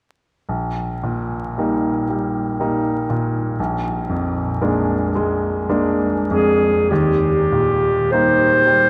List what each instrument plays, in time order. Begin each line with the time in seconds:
0.49 grand piano A#1
1.03 grand piano A#2
1.58 grand piano G3 A#3 D#4
2.09 grand piano G3
2.60 grand piano G3 A#3 D#4
3.10 grand piano A#2
3.59 grand piano A#1
4.09 grand piano F2
4.61 grand piano G#3 A#3 D4
5.15 grand piano G#3
5.69 grand piano G#3 A#3 D4
6.30 grand piano F2, clarinet G#4
6.90 grand piano D#2, clarinet G4
7.52 grand piano A#2
8.12 grand piano G3 A#3 D#4, clarinet C5
8.67 grand piano G3